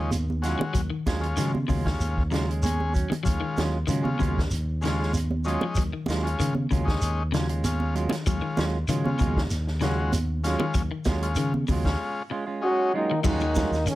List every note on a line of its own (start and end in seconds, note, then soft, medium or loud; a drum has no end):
0.00 0.54 D#2 medium
0.00 0.10 G#3 medium
0.00 0.16 G#3 soft
0.00 0.11 C#4 medium
0.00 0.16 C#4 soft
0.00 0.11 D#4 medium
0.00 0.15 F4 soft
0.11 closed hi-hat medium
0.11 high conga medium
0.11 shekere medium
0.30 high conga medium
0.42 0.63 F#3 medium
0.42 0.81 G#3 medium
0.42 0.63 G#3 medium
0.42 0.81 C#4 medium
0.42 0.64 C#4 medium
0.42 0.64 F4 medium
0.42 0.81 F#4 medium
0.42 snare soft
0.42 closed hi-hat medium
0.42 shekere soft
0.59 0.72 D#3 medium
0.59 high conga medium
0.74 0.89 D#2 medium
0.74 0.88 F#3 medium
0.74 kick medium
0.74 closed hi-hat medium
0.74 high conga soft
0.74 shekere medium
0.90 1.17 D#3 medium
1.06 1.33 D#2 medium
1.06 1.26 F#3 medium
1.06 1.26 G#3 medium
1.06 1.26 C#4 medium
1.06 1.26 F4 medium
1.06 kick medium
1.06 snare medium
1.06 closed hi-hat soft
1.06 high conga medium
1.06 shekere soft
1.20 1.52 G#3 medium
1.20 1.52 C#4 medium
1.20 1.52 F4 medium
1.20 closed hi-hat soft
1.37 1.64 C#3 medium
1.37 1.64 D#3 medium
1.37 1.57 F#3 medium
1.37 1.57 G#3 medium
1.37 1.57 C#4 medium
1.37 1.57 F4 medium
1.37 snare soft
1.37 closed hi-hat medium
1.37 high conga soft
1.37 shekere medium
1.55 high conga medium
1.68 1.96 D#2 medium
1.68 1.95 C#3 medium
1.68 1.88 F#3 medium
1.68 1.88 G#3 medium
1.68 1.88 C#4 medium
1.68 1.88 F4 medium
1.68 kick medium
1.68 open hi-hat medium
1.68 shekere soft
1.85 2.23 G#3 medium
1.85 2.23 C#4 medium
1.85 2.23 F4 medium
1.85 kick medium
1.85 snare medium
2.00 3.05 D#2 medium
2.00 closed hi-hat medium
2.00 high conga soft
2.00 shekere medium
2.18 kick medium
2.31 2.58 C#3 medium
2.31 2.48 F#3 medium
2.31 2.47 G#3 medium
2.31 2.47 C#4 medium
2.31 2.48 F4 medium
2.31 snare medium
2.31 closed hi-hat soft
2.31 shekere soft
2.48 2.67 G#3 soft
2.48 2.66 C#4 soft
2.48 closed hi-hat soft
2.63 2.93 G#3 medium
2.63 2.93 C#4 medium
2.63 2.94 G#4 medium
2.63 closed hi-hat medium
2.63 high conga medium
2.63 shekere medium
2.80 high conga medium
2.94 3.13 F#3 medium
2.94 3.14 C#4 medium
2.94 kick medium
2.94 closed hi-hat soft
2.94 shekere soft
3.10 3.23 D#3 medium
3.10 closed hi-hat soft
3.10 high conga medium
3.23 3.38 F#3 medium
3.23 3.64 G#3 medium
3.23 3.63 C#4 medium
3.23 3.64 F4 medium
3.23 kick medium
3.23 closed hi-hat medium
3.23 shekere medium
3.27 3.40 D#2 medium
3.27 high conga soft
3.41 3.68 D#3 medium
3.57 3.83 D#2 medium
3.57 3.77 F#3 medium
3.57 3.77 G#3 medium
3.57 3.77 C#4 medium
3.57 3.78 F4 medium
3.57 snare medium
3.57 closed hi-hat soft
3.57 high conga medium
3.57 shekere soft
3.87 4.15 C#3 medium
3.87 4.14 D#3 medium
3.87 4.08 F#3 medium
3.87 4.08 G#3 medium
3.87 4.08 C#4 medium
3.87 4.08 F4 medium
3.87 closed hi-hat medium
3.87 high conga soft
3.87 shekere medium
4.03 4.41 G#3 medium
4.03 4.42 C#4 medium
4.03 4.42 F4 medium
4.03 high conga medium
4.19 4.47 D#2 medium
4.19 4.46 C#3 medium
4.19 4.39 F#3 medium
4.19 4.39 G#3 medium
4.19 4.40 C#4 medium
4.19 4.40 F4 medium
4.19 kick medium
4.19 closed hi-hat soft
4.19 high conga medium
4.19 shekere soft
4.38 kick medium
4.38 snare medium
4.51 5.56 D#2 medium
4.51 closed hi-hat medium
4.51 high conga soft
4.51 shekere medium
4.81 5.10 C#3 medium
4.81 5.12 G#3 medium
4.81 4.99 G#3 medium
4.81 5.13 C#4 medium
4.81 4.99 C#4 medium
4.81 5.13 F4 medium
4.81 4.98 F4 medium
4.81 muted clean electric guitar stroke medium
4.81 closed hi-hat soft
4.81 shekere soft
4.85 snare medium
4.99 5.18 G#3 soft
4.99 5.18 C#4 soft
4.99 5.17 F4 soft
4.99 snare soft
5.13 closed hi-hat medium
5.13 high conga medium
5.13 shekere medium
5.31 high conga medium
5.44 5.65 F#3 medium
5.44 5.83 G#3 medium
5.44 5.65 G#3 medium
5.44 5.83 C#4 medium
5.44 5.65 C#4 medium
5.44 5.84 D#4 medium
5.44 5.65 F4 medium
5.44 closed hi-hat soft
5.44 shekere soft
5.61 5.75 F3 medium
5.61 high conga medium
5.75 5.91 D#2 medium
5.75 5.91 F#3 medium
5.75 kick medium
5.75 closed hi-hat medium
5.75 high conga soft
5.75 shekere medium
5.93 6.20 D#3 medium
6.06 6.34 D#2 medium
6.06 6.27 F#3 medium
6.06 6.27 G#3 medium
6.06 6.28 C#4 medium
6.06 6.28 F4 medium
6.06 closed hi-hat medium
6.06 high conga medium
6.06 shekere soft
6.10 snare medium
6.23 6.54 G#3 medium
6.23 6.54 C#4 medium
6.23 6.55 F4 medium
6.23 closed hi-hat soft
6.39 6.65 C#3 medium
6.39 6.66 D#3 medium
6.39 closed hi-hat medium
6.39 high conga soft
6.39 shekere medium
6.55 high conga medium
6.71 6.97 D#2 medium
6.71 6.97 C#3 medium
6.71 6.90 F#3 medium
6.71 6.90 G#3 medium
6.71 6.91 C#4 medium
6.71 6.91 F4 medium
6.71 kick medium
6.71 closed hi-hat soft
6.71 shekere soft
6.84 7.23 G#3 medium
6.84 7.23 C#4 medium
6.84 7.23 D#4 medium
6.88 kick medium
6.88 snare medium
7.01 8.06 D#2 medium
7.01 closed hi-hat medium
7.01 high conga soft
7.01 shekere medium
7.32 7.59 C#3 medium
7.32 7.49 F#3 medium
7.32 7.48 C#4 medium
7.32 7.48 F4 medium
7.32 snare medium
7.32 closed hi-hat soft
7.32 shekere soft
7.49 7.68 G#3 soft
7.49 7.67 C#4 soft
7.49 7.67 F4 soft
7.49 closed hi-hat soft
7.64 7.94 G#3 medium
7.64 7.95 C#4 medium
7.64 7.95 F4 medium
7.64 closed hi-hat medium
7.64 high conga medium
7.64 shekere medium
7.80 high conga medium
7.95 8.14 F#3 medium
7.95 8.14 G#3 medium
7.95 8.15 C#4 medium
7.95 8.15 F4 medium
7.95 closed hi-hat soft
7.95 shekere soft
8.09 8.24 D#3 medium
8.09 snare soft
8.09 closed hi-hat soft
8.09 high conga loud
8.26 8.40 D#2 medium
8.26 8.40 F#3 medium
8.26 8.65 G#3 medium
8.26 8.65 C#4 medium
8.26 8.66 F4 medium
8.26 kick medium
8.26 closed hi-hat medium
8.26 high conga soft
8.26 shekere medium
8.42 8.69 D#3 medium
8.57 8.83 D#2 medium
8.57 8.76 F#3 medium
8.57 8.77 G#3 medium
8.57 8.77 C#4 medium
8.57 8.77 F4 medium
8.57 snare medium
8.57 closed hi-hat soft
8.57 high conga medium
8.57 shekere soft
8.88 9.15 C#3 medium
8.88 9.15 D#3 medium
8.88 9.08 F#3 medium
8.88 9.08 G#3 medium
8.88 9.08 C#4 medium
8.88 9.08 F4 medium
8.88 closed hi-hat medium
8.88 high conga soft
8.88 shekere medium
9.04 9.42 G#3 medium
9.04 9.42 C#4 medium
9.04 9.43 F4 medium
9.04 high conga medium
9.19 9.47 D#2 medium
9.19 9.46 C#3 medium
9.19 9.40 F#3 medium
9.19 9.40 G#3 medium
9.19 9.40 C#4 medium
9.19 9.40 F4 medium
9.19 kick medium
9.19 closed hi-hat soft
9.19 high conga medium
9.19 shekere soft
9.37 kick medium
9.37 snare medium
9.50 10.55 D#2 medium
9.50 snare soft
9.50 closed hi-hat medium
9.50 high conga soft
9.50 shekere medium
9.67 snare soft
9.81 10.08 C#3 medium
9.81 9.99 F#3 medium
9.81 10.12 G#3 medium
9.81 9.99 G#3 medium
9.81 10.13 C#4 medium
9.81 9.99 C#4 medium
9.81 9.98 F4 medium
9.81 10.13 F#4 loud
9.81 snare medium
9.81 closed hi-hat soft
9.81 shekere soft
10.00 10.18 G#3 soft
10.00 10.17 C#4 soft
10.00 10.17 F4 soft
10.12 closed hi-hat medium
10.12 high conga medium
10.12 shekere medium
10.44 10.65 F#3 medium
10.44 10.82 G#3 medium
10.44 10.65 G#3 medium
10.44 10.82 C#4 medium
10.44 10.65 C#4 medium
10.44 10.82 F4 loud
10.44 10.65 F4 medium
10.44 snare soft
10.44 closed hi-hat medium
10.44 shekere soft
10.60 10.73 D#3 medium
10.60 high conga medium
10.74 10.89 D#2 medium
10.74 10.89 F#3 medium
10.74 kick medium
10.74 closed hi-hat medium
10.74 high conga soft
10.74 shekere medium
10.91 11.18 D#3 medium
11.05 11.33 D#2 medium
11.05 11.27 F#3 medium
11.05 11.27 G#3 medium
11.05 kick medium
11.05 snare medium
11.05 closed hi-hat medium
11.05 high conga medium
11.05 shekere soft
11.09 11.27 C#4 medium
11.09 11.27 F4 medium
11.22 11.53 G#3 medium
11.22 11.53 C#4 medium
11.22 11.53 F4 medium
11.22 closed hi-hat soft
11.35 11.63 C#3 medium
11.35 11.64 D#3 medium
11.35 closed hi-hat medium
11.35 high conga soft
11.35 shekere medium
11.54 high conga medium
11.67 11.95 D#2 medium
11.67 11.95 C#3 medium
11.67 11.89 F#3 medium
11.67 11.89 G#3 medium
11.67 11.89 C#4 medium
11.67 kick medium
11.67 open hi-hat medium
11.67 high conga medium
11.67 shekere soft
11.72 11.90 F4 medium
11.85 12.23 G#3 medium
11.85 12.23 C#4 medium
11.85 12.23 F4 loud
11.85 kick medium
11.85 snare medium
12.30 12.46 G#3 medium
12.30 12.46 C#4 medium
12.30 12.45 F4 medium
12.30 muted clean electric guitar stroke medium
12.47 12.66 G#3 soft
12.47 12.66 C#4 soft
12.47 12.65 F4 medium
12.61 12.92 G#3 medium
12.61 12.92 C#4 medium
12.61 12.93 C#4 medium
12.61 12.93 D#4 medium
12.61 12.92 F#4 loud
12.66 12.93 F#3 medium
12.93 13.23 D#3 medium
12.93 13.13 F#3 medium
12.93 13.13 G#3 medium
12.93 13.23 A#3 medium
12.93 13.14 C#4 medium
12.93 13.22 D#4 medium
12.93 13.14 F4 medium
13.11 13.23 D#3 medium
13.23 13.65 D#2 medium
13.23 13.38 F#3 medium
13.23 13.44 F#3 medium
13.23 13.71 G#3 medium
13.23 13.44 G#3 medium
13.23 13.44 C#4 medium
13.23 13.71 C#4 medium
13.23 13.90 D#4 loud
13.23 13.44 F4 medium
13.23 kick medium
13.23 snare soft
13.23 crash medium
13.23 high conga soft
13.23 low conga medium
13.23 shekere medium
13.27 13.84 D#3 medium
13.27 13.93 A#3 medium
13.27 13.72 F#4 medium
13.40 13.68 D#3 medium
13.40 shekere soft
13.55 13.75 F#3 medium
13.55 13.75 G#3 medium
13.55 13.75 C#4 medium
13.55 13.76 F4 medium
13.55 kick medium
13.55 snare medium
13.55 closed hi-hat medium
13.55 high conga medium
13.55 low conga medium
13.55 shekere medium
13.71 13.84 D#2 medium
13.71 snare soft
13.71 shekere soft
13.86 13.95 D#3 medium
13.86 13.95 C#4 medium
13.86 closed hi-hat medium
13.86 high conga soft
13.86 shekere medium
13.90 13.95 C#3 medium
13.90 13.95 G#3 medium